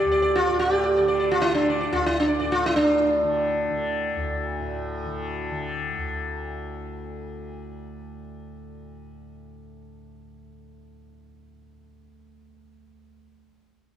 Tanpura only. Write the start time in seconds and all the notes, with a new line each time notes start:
Already playing: A2 D3
0.05 D2
0.51 A2
0.98 D3
1.45 D3
1.92 D2
2.39 A2
2.77 A2
3.23 D3
3.69 D3
4.16 D2
4.60 A2
5.05 D3
5.51 D3
5.97 D2